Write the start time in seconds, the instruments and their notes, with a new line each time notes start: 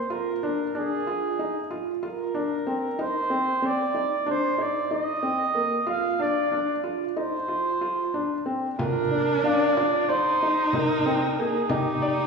Already playing: flugelhorn C5
0.10 felt piano F4, flugelhorn A#4
0.43 felt piano D4
0.75 felt piano D4, flugelhorn G#4
1.07 felt piano F4
1.39 felt piano D#4
1.71 felt piano F4
2.03 felt piano F4, flugelhorn A#4
2.35 felt piano D4
2.67 felt piano C4
2.99 felt piano D#4, flugelhorn C5
3.30 felt piano C4
3.62 felt piano C4, flugelhorn D5
3.94 felt piano D#4
4.26 felt piano D4, flugelhorn C5
4.58 felt piano D#4, flugelhorn D5
4.91 felt piano D#4, flugelhorn D#5
5.23 felt piano C4
5.55 felt piano A#3
5.87 felt piano F4, flugelhorn F5
6.19 felt piano D4, flugelhorn D5
6.52 felt piano D4
6.84 felt piano F4
7.17 felt piano D#4, flugelhorn C5
7.48 felt piano F4
7.81 felt piano F4
8.14 felt piano D4
8.46 felt piano C4
8.78 viola D4, felt piano F4, flugelhorn A#4, frame drum
9.11 felt piano D4
9.44 felt piano D4, flugelhorn D5, celesta F5
9.77 felt piano F4, frame drum
10.08 viola D#4, flugelhorn C5, felt piano D5
10.41 felt piano D#4, frame drum
10.73 felt piano D#4, flugelhorn A#4, frame drum
11.06 felt piano C4
11.38 felt piano A#3, flugelhorn G#4
11.68 viola D#4, felt piano D#4, flugelhorn G4, frame drum
12.02 felt piano D5